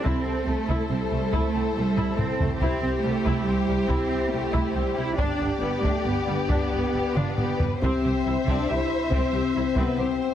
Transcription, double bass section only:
X:1
M:3/4
L:1/8
Q:1/4=140
K:C
V:1 name="Double bass section" clef=bass
C,, C,, C,, C,, C,, C,, | C,, C,, C,, C,, C,, C,, | C,, C,, C,, C,, C,, C,, | C,, C,, C,, C,, C,, C,, |
G,,, G,,, G,,, G,,, G,,, G,,, | G,,, G,,, G,,, G,,, G,,, G,,, | C,, C,, C,, C,, C,, z | C,, C,, C,, C,, C,, z |]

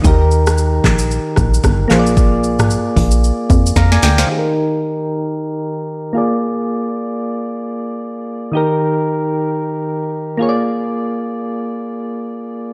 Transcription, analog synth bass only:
X:1
M:4/4
L:1/16
Q:"Swing 16ths" 1/4=113
K:Eb
V:1 name="Analog synth bass" clef=bass
E,,6 B,,,3 z B,,,2 G,,,2 B,,,2- | B,,,6 B,,,3 z F,,2 F,,2 D,,2 | z16 | z16 |
z16 | z16 |]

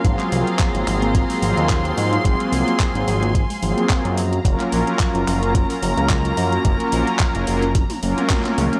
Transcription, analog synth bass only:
X:1
M:4/4
L:1/16
Q:"Swing 16ths" 1/4=109
K:Abmix
V:1 name="Analog synth bass" clef=bass
A,,, z C,, z2 A,,, A,,,3 z A,,, E,,3 A,, z | A,,, z C,, z2 A,,, A,,,3 z A,,, z2 G,,3 | G,,, z B,,, z2 G,,, G,,,3 z G,,, D,,3 G,, z | G,,, z B,,, z2 G,,, G,,,3 z G,,, z3 D,, z |]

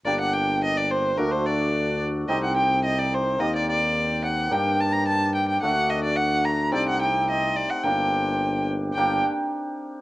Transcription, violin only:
X:1
M:2/4
L:1/16
Q:1/4=108
K:Gm
V:1 name="Violin"
d ^f g2 e d c2 | B c d4 z2 | e ^f g2 e d c2 | e d d4 ^f2 |
g2 a b a2 g g | ^f2 e d f2 b2 | d ^f g2 e2 d f | g6 z2 |
g2 z6 |]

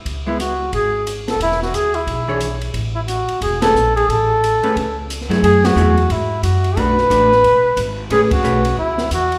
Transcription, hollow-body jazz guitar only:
X:1
M:4/4
L:1/8
Q:"Swing" 1/4=179
K:A
V:1 name="Hollow-body jazz guitar"
z [G,B,E] z6 | z4 z [E,DGc] z2 | z4 z [A,CGB] z2 | z3 [A,CGB] z3 [F,A,EG]- |
[F,A,EG]2 [F,A,EG] z4 z | [A,DF] z [A,DF] z4 z | [A,CGB] z [A,CGB] z4 z |]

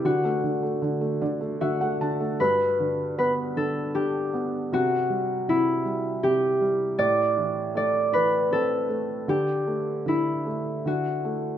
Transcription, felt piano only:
X:1
M:3/4
L:1/16
Q:1/4=78
K:G
V:1 name="Felt piano"
z6 d2 e f a2 | z12 | z12 | z12 |
z12 |]
V:2 name="Felt piano" clef=bass
D, A, D, A, D, A, D, A, D, A, D, A, | G,,2 D,2 B,2 D,2 D2 B,2 | C,2 G,2 C,2 G,2 C,2 G,2 | A,,2 E,2 A,2 E,2 C2 A,2 |
D,2 A,2 D,2 A,2 D,2 A,2 |]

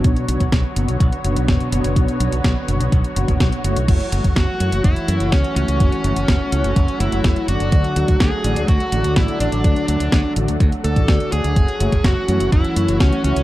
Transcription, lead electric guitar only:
X:1
M:4/4
L:1/8
Q:1/4=125
K:F#m
V:1 name="Lead electric guitar"
z8 | z8 | z2 F2 E2 C C- | C4- C E2 F- |
F2 G2 F2 E D- | D3 z2 A2 G- | G2 F2 E2 C C |]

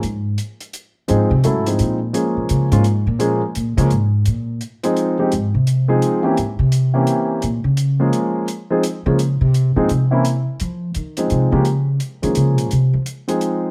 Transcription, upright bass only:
X:1
M:3/4
L:1/8
Q:"Swing" 1/4=170
K:Fm
V:1 name="Upright bass" clef=bass
A,,2 z4 | A,, C, z2 B,,2 | z B,, D, A,,2 B,,- | B,, z B,, D, A,,2 |
B,,2 z4 | A,, C,3 z2 | A,, C,3 z2 | B,, D,3 z2 |
z3 D,2 C,- | C, B,, C,3 z | F,2 E,2 C, D,- | D,2 z E, D, B,, |
C, F, z4 |]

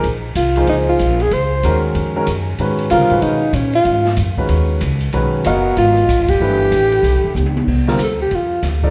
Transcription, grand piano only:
X:1
M:4/4
L:1/8
Q:"Swing" 1/4=189
K:Abdor
V:1 name="Grand piano"
z3 [F,B,EA=c]3 z2 | z2 [E,A,DGB]3 [E,A,DGB] z2 | [E,A,DGc]2 [=D,=G,=CFB] [E,A,_D_G_c]2 z3 | z3 [E,A,DGc]3 z2 |
[E,A,DGc]2 [G,CBef]3 z3 | [=E,=A,=D=G=B]4- [E,A,DGB] z3 | [K:Cm] z [D,G,CFB] z4 z [F,B,E=Ad] |]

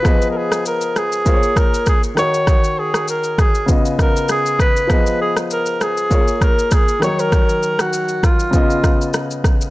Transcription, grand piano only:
X:1
M:4/4
L:1/8
Q:"Swing 16ths" 1/4=99
K:Ebm
V:1 name="Grand piano"
[F,CAe]4 [B,FA=cd]3 [E,EGd]- | [E,EGd]4 [D,CFe]4 | [F,CAe]4 [B,FAd]3 [E,G,Ed]- | [E,G,Ed]4 [D,CFe]4 |]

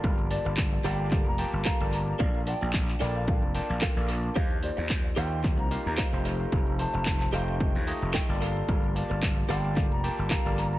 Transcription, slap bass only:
X:1
M:4/4
L:1/16
Q:"Swing 16ths" 1/4=111
K:Gm
V:1 name="Slap bass" clef=bass
G,,,2 z G,,,2 z G,,,3 F,,, z G,,, z G,,,2 z | B,,,2 z B,,,2 z B,,,3 F,,, z B,,, z B,,,2 z | E,,2 z E,,2 z E,,3 C,, z E,, z F,,,2 z | F,,,2 z F,,,2 z F,,,3 E,, z F,,, z G,,,2 z |
G,,,2 z G,,,2 z G,,,3 F,,, z G,,, z G,,,2 z |]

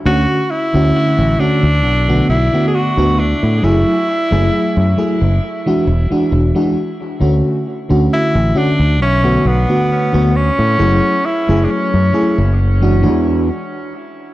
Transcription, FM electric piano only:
X:1
M:4/4
L:1/16
Q:"Swing 16ths" 1/4=67
K:F#m
V:1 name="FM electric piano"
[D,A,CF] z2 [D,A,CF]3 [D,A,CF] z2 [D,A,B,F] z [D,A,B,F]2 [D,A,B,F] z2 | [F,A,EG] z2 [F,A,EG]3 [F,A,EG] z2 [E,G,DF] z [E,G,DF]2 [E,G,DF] z2 | [D,A,CF] z2 [D,A,CF]3 [D,A,CF] z2 [D,A,B,F] z [D,A,B,F]2 [D,A,B,F] z2 | [F,A,EG] z2 [F,A,EG]3 [F,A,EG] z2 [E,G,DF] [E,G,DF]2 z4 |]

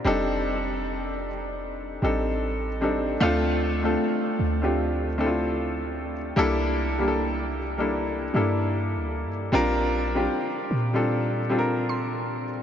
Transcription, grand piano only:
X:1
M:4/4
L:1/16
Q:"Swing 16ths" 1/4=76
K:Dphr
V:1 name="Grand piano"
[G,CDEA]6 z4 [G,CDEA]3 z [G,CDEA]2 | [A,CDFA]2 z [A,CDFA]3 z [A,CDFG]2 z [A,CD=EFA]4- [A,CDEFA] z | [G,B,D=EA]2 z [G,B,DEGA]3 z [G,B,DEA]2 z [G,B,DEA]4- [G,B,DEA] z | [G,CDFB]2 z [G,CDFG]3 z [G,CDFA]2 z [G,CDFAB]4- [G,CDFAB] z |]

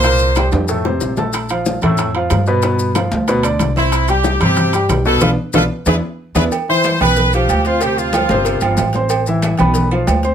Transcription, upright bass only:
X:1
M:4/4
L:1/8
Q:1/4=185
K:C
V:1 name="Upright bass" clef=bass
C,,3 F,,3 _B,,,2- | _B,,,3 F,,3 G,,2- | G,,3 D,,3 C,,2- | C,,3 G,,3 B,,,2 |
B,,, z B,,, z E,, z2 E,, | z3 B,,,3 D,,2- | D,,3 G,,,2 G,,, A,,,2- | A,,,3 B,,,3 D,,2 |]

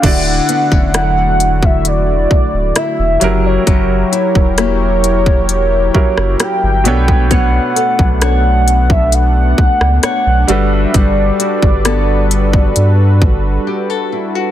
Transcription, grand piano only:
X:1
M:4/4
L:1/8
Q:1/4=66
K:D
V:1 name="Grand piano"
[D,DEFd]6- [D,DEFd] [F,CEG^A]- | [F,CEG^A]4- [F,CEGA] [F,CEGA]2 [B,,B,D=Ac]- | [B,,B,DAc]6- [B,,B,DAc] [G,DFAB]- | [G,DFAB]6- [G,DFAB] z |]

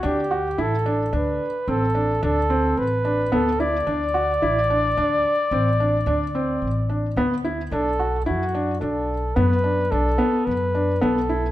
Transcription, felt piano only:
X:1
M:7/4
L:1/8
Q:1/4=109
K:Dmix
V:1 name="Felt piano"
D F E D D2 C D D C2 D B, E | D F E D D2 C D D C2 D B, E | D F E D D2 B, D D B,2 D B, E |]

